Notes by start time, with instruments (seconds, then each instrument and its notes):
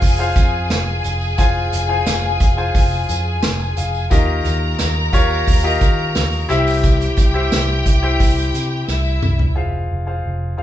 Already playing: grand piano F4 G#4 C5 F5, violin section G#4 G#5
0.01 picked electric bass F1, kick, hi-hat pedal, open hi-hat, tambourine
0.19 grand piano F4 G#4 C5 F5, tambourine
0.36 picked electric bass F2, kick, hi-hat pedal, open hi-hat, tambourine
0.70 picked electric bass F1, snare, hi-hat pedal, open hi-hat, tambourine
1.04 picked electric bass F1, hi-hat pedal, open hi-hat, tambourine
1.22 tambourine
1.38 picked electric bass F1, grand piano F4 G#4 C5 G#5, kick, hi-hat pedal, open hi-hat, tambourine
1.72 picked electric bass F1, hi-hat pedal, open hi-hat, tambourine
1.88 grand piano F4 G#4 C5 F5
2.06 picked electric bass F1, snare, hi-hat pedal, open hi-hat, tambourine
2.40 picked electric bass F1, kick, hi-hat pedal, open hi-hat, tambourine
2.57 grand piano F4 G#4 C5 G#5
2.75 picked electric bass F1, kick, hi-hat pedal, open hi-hat, tambourine
2.92 tambourine
3.09 picked electric bass F2, hi-hat pedal, open hi-hat, tambourine
3.42 picked electric bass F1, grand piano C6, snare, hi-hat pedal, open hi-hat, tambourine
3.60 grand piano G#5, tambourine
3.77 picked electric bass F1, grand piano F5, hi-hat pedal, open hi-hat, tambourine
3.95 tambourine
4.10 picked electric bass D#2, grand piano D#3 F4 G4 A#4 D#5, violin section A#4 A#5, kick, hi-hat pedal, open hi-hat, tambourine
4.45 picked electric bass D#2, hi-hat pedal, open hi-hat, tambourine
4.79 picked electric bass D#2, snare, hi-hat pedal, open hi-hat, tambourine
5.13 picked electric bass D#2, grand piano F4 G4 A#4 C#5, kick, hi-hat pedal, open hi-hat, tambourine
5.31 tambourine
5.47 picked electric bass D#2, kick, hi-hat pedal, open hi-hat, tambourine
5.64 grand piano F4 G4 A#4 D#5, tambourine
5.81 picked electric bass D#3, kick, hi-hat pedal, open hi-hat, tambourine
6.15 picked electric bass D#2, snare, hi-hat pedal, open hi-hat, tambourine
6.32 open hi-hat, tambourine
6.49 picked electric bass C2, grand piano C3 E4 G4 C5 E5, violin section G4 G5, hi-hat pedal, open hi-hat, tambourine
6.67 hi-hat pedal, open hi-hat, tambourine
6.83 kick, hi-hat pedal, open hi-hat, tambourine
7.01 hi-hat pedal
7.17 picked electric bass C2, kick, hi-hat pedal, open hi-hat, tambourine
7.34 grand piano E4 G4 C5 E5
7.52 picked electric bass C2, snare, hi-hat pedal, open hi-hat, tambourine
7.86 picked electric bass C2, kick, hi-hat pedal, open hi-hat, tambourine
8.02 grand piano E4 G4 C5 G5, tambourine
8.20 picked electric bass C2, kick, hi-hat pedal, open hi-hat, tambourine
8.38 tambourine
8.54 picked electric bass C3, hi-hat pedal, open hi-hat, tambourine
8.88 picked electric bass C2, violin section E4 E5, snare, tambourine
9.05 tambourine
9.22 picked electric bass C2, mid tom, tambourine
9.39 floor tom
9.55 picked electric bass F1, grand piano F4 G#4 C5 F5
9.91 picked electric bass F1
10.06 grand piano F4 G#4 C5 F5
10.26 picked electric bass F1
10.57 picked electric bass F1, grand piano F4 G#4 C5 F5